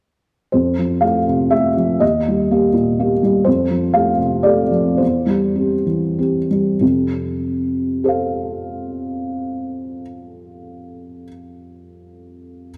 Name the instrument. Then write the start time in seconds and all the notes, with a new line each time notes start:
felt piano
0.52 F2 C5
0.79 F3
1.01 A3 A4 F5
1.28 C3
1.51 A3 A4 E5
1.77 F3
2.00 D#2 D#5
2.28 G3
2.51 A#3 G4
2.73 A#2
2.99 A#3 G4
3.23 G3
3.45 F2 C5
3.71 F3
3.94 A3 A4 F5
4.18 C3
4.43 A3 A4 D5
4.71 F3
4.97 E2 C5
5.27 G3
5.55 C4 G4
5.86 E3
6.19 C4 G4
6.51 G3
6.80 F2 C3
8.04 A4 C5
8.09 F5